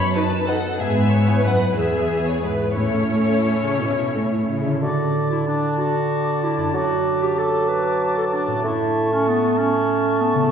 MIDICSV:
0, 0, Header, 1, 10, 480
1, 0, Start_track
1, 0, Key_signature, 3, "major"
1, 0, Tempo, 321888
1, 1187, Time_signature, 3, 2, 24, 8
1, 3110, Tempo, 345423
1, 6470, Tempo, 327332
1, 6947, Key_signature, 2, "major"
1, 7910, Tempo, 315126
1, 15572, End_track
2, 0, Start_track
2, 0, Title_t, "Flute"
2, 0, Program_c, 0, 73
2, 6954, Note_on_c, 0, 86, 47
2, 7855, Note_off_c, 0, 86, 0
2, 7905, Note_on_c, 0, 86, 43
2, 8358, Note_off_c, 0, 86, 0
2, 8367, Note_on_c, 0, 86, 45
2, 9798, Note_off_c, 0, 86, 0
2, 9834, Note_on_c, 0, 86, 45
2, 10784, Note_off_c, 0, 86, 0
2, 10805, Note_on_c, 0, 86, 47
2, 12230, Note_off_c, 0, 86, 0
2, 12270, Note_on_c, 0, 86, 44
2, 12722, Note_off_c, 0, 86, 0
2, 12733, Note_on_c, 0, 85, 50
2, 14133, Note_off_c, 0, 85, 0
2, 14163, Note_on_c, 0, 85, 51
2, 15562, Note_off_c, 0, 85, 0
2, 15572, End_track
3, 0, Start_track
3, 0, Title_t, "Oboe"
3, 0, Program_c, 1, 68
3, 6930, Note_on_c, 1, 81, 40
3, 7843, Note_off_c, 1, 81, 0
3, 7915, Note_on_c, 1, 81, 43
3, 8375, Note_off_c, 1, 81, 0
3, 8395, Note_on_c, 1, 81, 47
3, 9812, Note_off_c, 1, 81, 0
3, 9852, Note_on_c, 1, 81, 43
3, 10793, Note_off_c, 1, 81, 0
3, 10825, Note_on_c, 1, 81, 48
3, 12241, Note_off_c, 1, 81, 0
3, 12274, Note_on_c, 1, 81, 44
3, 12724, Note_off_c, 1, 81, 0
3, 12737, Note_on_c, 1, 81, 47
3, 14135, Note_off_c, 1, 81, 0
3, 14158, Note_on_c, 1, 81, 54
3, 15559, Note_off_c, 1, 81, 0
3, 15572, End_track
4, 0, Start_track
4, 0, Title_t, "Violin section"
4, 0, Program_c, 2, 48
4, 0, Note_on_c, 2, 83, 80
4, 230, Note_on_c, 2, 81, 69
4, 232, Note_off_c, 2, 83, 0
4, 708, Note_off_c, 2, 81, 0
4, 730, Note_on_c, 2, 78, 67
4, 1189, Note_on_c, 2, 76, 83
4, 1193, Note_off_c, 2, 78, 0
4, 1917, Note_on_c, 2, 80, 66
4, 1919, Note_off_c, 2, 76, 0
4, 2163, Note_off_c, 2, 80, 0
4, 2171, Note_on_c, 2, 78, 65
4, 2632, Note_off_c, 2, 78, 0
4, 2632, Note_on_c, 2, 76, 69
4, 3337, Note_off_c, 2, 76, 0
4, 3355, Note_on_c, 2, 73, 58
4, 3584, Note_on_c, 2, 71, 45
4, 3590, Note_off_c, 2, 73, 0
4, 4046, Note_on_c, 2, 69, 60
4, 4048, Note_off_c, 2, 71, 0
4, 6467, Note_off_c, 2, 69, 0
4, 15572, End_track
5, 0, Start_track
5, 0, Title_t, "Violin section"
5, 0, Program_c, 3, 48
5, 0, Note_on_c, 3, 73, 61
5, 215, Note_off_c, 3, 73, 0
5, 228, Note_on_c, 3, 71, 54
5, 708, Note_on_c, 3, 69, 57
5, 716, Note_off_c, 3, 71, 0
5, 1181, Note_on_c, 3, 68, 55
5, 1182, Note_off_c, 3, 69, 0
5, 1654, Note_off_c, 3, 68, 0
5, 1662, Note_on_c, 3, 73, 50
5, 2157, Note_on_c, 3, 71, 43
5, 2161, Note_off_c, 3, 73, 0
5, 2625, Note_off_c, 3, 71, 0
5, 2635, Note_on_c, 3, 68, 49
5, 3590, Note_off_c, 3, 68, 0
5, 3594, Note_on_c, 3, 71, 42
5, 4053, Note_off_c, 3, 71, 0
5, 4054, Note_on_c, 3, 73, 50
5, 6662, Note_off_c, 3, 73, 0
5, 15572, End_track
6, 0, Start_track
6, 0, Title_t, "Harp"
6, 0, Program_c, 4, 46
6, 0, Note_on_c, 4, 42, 52
6, 0, Note_on_c, 4, 59, 37
6, 0, Note_on_c, 4, 63, 41
6, 0, Note_on_c, 4, 69, 44
6, 0, Note_on_c, 4, 71, 44
6, 0, Note_on_c, 4, 75, 51
6, 0, Note_on_c, 4, 78, 50
6, 217, Note_off_c, 4, 71, 0
6, 235, Note_on_c, 4, 71, 49
6, 467, Note_off_c, 4, 63, 0
6, 485, Note_on_c, 4, 63, 44
6, 700, Note_off_c, 4, 75, 0
6, 718, Note_on_c, 4, 75, 44
6, 935, Note_off_c, 4, 71, 0
6, 953, Note_on_c, 4, 71, 48
6, 1184, Note_on_c, 4, 44, 49
6, 1203, Note_off_c, 4, 78, 0
6, 1204, Note_off_c, 4, 42, 0
6, 1205, Note_off_c, 4, 69, 0
6, 1205, Note_off_c, 4, 75, 0
6, 1209, Note_off_c, 4, 63, 0
6, 1402, Note_off_c, 4, 59, 0
6, 1420, Note_on_c, 4, 59, 35
6, 1649, Note_off_c, 4, 71, 0
6, 1667, Note_on_c, 4, 71, 41
6, 1913, Note_on_c, 4, 64, 41
6, 2161, Note_on_c, 4, 76, 44
6, 2380, Note_off_c, 4, 71, 0
6, 2397, Note_on_c, 4, 71, 41
6, 2623, Note_on_c, 4, 40, 39
6, 2644, Note_off_c, 4, 44, 0
6, 2840, Note_off_c, 4, 59, 0
6, 2858, Note_on_c, 4, 59, 31
6, 3106, Note_on_c, 4, 68, 37
6, 3329, Note_off_c, 4, 71, 0
6, 3346, Note_on_c, 4, 71, 34
6, 3565, Note_off_c, 4, 76, 0
6, 3582, Note_on_c, 4, 76, 38
6, 3803, Note_off_c, 4, 71, 0
6, 3820, Note_on_c, 4, 71, 33
6, 4050, Note_on_c, 4, 45, 37
6, 4066, Note_off_c, 4, 40, 0
6, 4066, Note_off_c, 4, 68, 0
6, 4067, Note_off_c, 4, 59, 0
6, 4067, Note_off_c, 4, 71, 0
6, 4286, Note_on_c, 4, 61, 27
6, 4538, Note_on_c, 4, 69, 32
6, 4803, Note_on_c, 4, 73, 32
6, 5034, Note_off_c, 4, 76, 0
6, 5050, Note_on_c, 4, 76, 34
6, 5269, Note_off_c, 4, 73, 0
6, 5286, Note_on_c, 4, 73, 29
6, 5494, Note_off_c, 4, 45, 0
6, 5510, Note_on_c, 4, 45, 36
6, 5715, Note_off_c, 4, 61, 0
6, 5732, Note_on_c, 4, 61, 29
6, 5962, Note_off_c, 4, 69, 0
6, 5979, Note_on_c, 4, 69, 33
6, 6212, Note_off_c, 4, 73, 0
6, 6228, Note_on_c, 4, 73, 33
6, 6453, Note_off_c, 4, 76, 0
6, 6470, Note_on_c, 4, 76, 35
6, 6681, Note_on_c, 4, 50, 42
6, 6696, Note_off_c, 4, 73, 0
6, 6714, Note_on_c, 4, 73, 32
6, 6743, Note_on_c, 4, 62, 29
6, 6793, Note_off_c, 4, 69, 0
6, 6810, Note_on_c, 4, 69, 34
6, 6959, Note_off_c, 4, 61, 0
6, 6963, Note_off_c, 4, 45, 0
6, 6963, Note_off_c, 4, 64, 0
6, 6964, Note_off_c, 4, 73, 0
6, 6965, Note_off_c, 4, 76, 0
6, 9560, Note_on_c, 4, 42, 37
6, 9608, Note_off_c, 4, 62, 0
6, 9626, Note_on_c, 4, 62, 36
6, 9677, Note_off_c, 4, 69, 0
6, 9695, Note_on_c, 4, 69, 33
6, 9713, Note_off_c, 4, 50, 0
6, 12453, Note_on_c, 4, 45, 39
6, 12525, Note_on_c, 4, 61, 38
6, 12590, Note_on_c, 4, 64, 38
6, 12606, Note_off_c, 4, 42, 0
6, 12639, Note_off_c, 4, 62, 0
6, 12641, Note_off_c, 4, 69, 0
6, 12659, Note_on_c, 4, 69, 37
6, 15311, Note_on_c, 4, 49, 49
6, 15362, Note_off_c, 4, 61, 0
6, 15380, Note_on_c, 4, 61, 40
6, 15429, Note_off_c, 4, 64, 0
6, 15447, Note_on_c, 4, 64, 40
6, 15470, Note_off_c, 4, 45, 0
6, 15498, Note_off_c, 4, 69, 0
6, 15516, Note_on_c, 4, 69, 40
6, 15572, Note_off_c, 4, 49, 0
6, 15572, Note_off_c, 4, 61, 0
6, 15572, Note_off_c, 4, 64, 0
6, 15572, Note_off_c, 4, 69, 0
6, 15572, End_track
7, 0, Start_track
7, 0, Title_t, "Clarinet"
7, 0, Program_c, 5, 71
7, 6456, Note_on_c, 5, 64, 53
7, 6942, Note_on_c, 5, 66, 71
7, 6964, Note_off_c, 5, 64, 0
7, 7638, Note_off_c, 5, 66, 0
7, 7647, Note_on_c, 5, 64, 59
7, 7888, Note_off_c, 5, 64, 0
7, 7897, Note_on_c, 5, 62, 62
7, 8361, Note_on_c, 5, 66, 74
7, 8384, Note_off_c, 5, 62, 0
7, 9359, Note_on_c, 5, 64, 60
7, 9382, Note_off_c, 5, 66, 0
7, 9805, Note_off_c, 5, 64, 0
7, 9814, Note_on_c, 5, 66, 69
7, 10559, Note_on_c, 5, 67, 67
7, 10582, Note_off_c, 5, 66, 0
7, 10802, Note_on_c, 5, 69, 63
7, 10825, Note_off_c, 5, 67, 0
7, 11261, Note_on_c, 5, 71, 66
7, 11284, Note_off_c, 5, 69, 0
7, 11991, Note_off_c, 5, 71, 0
7, 12000, Note_on_c, 5, 69, 65
7, 12114, Note_off_c, 5, 69, 0
7, 12235, Note_on_c, 5, 62, 60
7, 12704, Note_off_c, 5, 62, 0
7, 12728, Note_on_c, 5, 64, 63
7, 13450, Note_on_c, 5, 61, 71
7, 13473, Note_off_c, 5, 64, 0
7, 13691, Note_on_c, 5, 59, 68
7, 13714, Note_off_c, 5, 61, 0
7, 14141, Note_on_c, 5, 61, 79
7, 14164, Note_off_c, 5, 59, 0
7, 15108, Note_on_c, 5, 59, 66
7, 15131, Note_off_c, 5, 61, 0
7, 15572, Note_off_c, 5, 59, 0
7, 15572, End_track
8, 0, Start_track
8, 0, Title_t, "Viola section"
8, 0, Program_c, 6, 48
8, 230, Note_on_c, 6, 71, 46
8, 233, Note_on_c, 6, 63, 50
8, 350, Note_off_c, 6, 71, 0
8, 352, Note_off_c, 6, 63, 0
8, 713, Note_on_c, 6, 63, 50
8, 714, Note_on_c, 6, 71, 48
8, 832, Note_off_c, 6, 63, 0
8, 833, Note_off_c, 6, 71, 0
8, 1195, Note_on_c, 6, 59, 49
8, 1197, Note_on_c, 6, 71, 58
8, 2572, Note_off_c, 6, 59, 0
8, 2573, Note_off_c, 6, 71, 0
8, 2627, Note_on_c, 6, 68, 48
8, 2630, Note_on_c, 6, 59, 47
8, 3569, Note_off_c, 6, 59, 0
8, 3572, Note_off_c, 6, 68, 0
8, 3588, Note_on_c, 6, 68, 35
8, 3589, Note_on_c, 6, 59, 42
8, 4041, Note_off_c, 6, 68, 0
8, 4042, Note_off_c, 6, 59, 0
8, 4047, Note_on_c, 6, 61, 49
8, 4048, Note_on_c, 6, 64, 43
8, 6659, Note_off_c, 6, 64, 0
8, 6715, Note_off_c, 6, 61, 0
8, 15572, End_track
9, 0, Start_track
9, 0, Title_t, "Bassoon"
9, 0, Program_c, 7, 70
9, 6936, Note_on_c, 7, 50, 49
9, 9767, Note_off_c, 7, 50, 0
9, 9827, Note_on_c, 7, 54, 49
9, 12664, Note_off_c, 7, 54, 0
9, 12719, Note_on_c, 7, 57, 55
9, 15528, Note_off_c, 7, 57, 0
9, 15572, End_track
10, 0, Start_track
10, 0, Title_t, "Cello section"
10, 0, Program_c, 8, 48
10, 0, Note_on_c, 8, 42, 64
10, 152, Note_off_c, 8, 42, 0
10, 1183, Note_on_c, 8, 44, 53
10, 2102, Note_off_c, 8, 44, 0
10, 2161, Note_on_c, 8, 42, 41
10, 2617, Note_off_c, 8, 42, 0
10, 2635, Note_on_c, 8, 40, 46
10, 3572, Note_off_c, 8, 40, 0
10, 3596, Note_on_c, 8, 44, 40
10, 4045, Note_off_c, 8, 44, 0
10, 4051, Note_on_c, 8, 45, 42
10, 4488, Note_off_c, 8, 45, 0
10, 4537, Note_on_c, 8, 45, 43
10, 5235, Note_off_c, 8, 45, 0
10, 5287, Note_on_c, 8, 49, 44
10, 5514, Note_off_c, 8, 49, 0
10, 5522, Note_on_c, 8, 47, 48
10, 5980, Note_on_c, 8, 45, 40
10, 5988, Note_off_c, 8, 47, 0
10, 6466, Note_off_c, 8, 45, 0
10, 6466, Note_on_c, 8, 49, 41
10, 6936, Note_off_c, 8, 49, 0
10, 15572, End_track
0, 0, End_of_file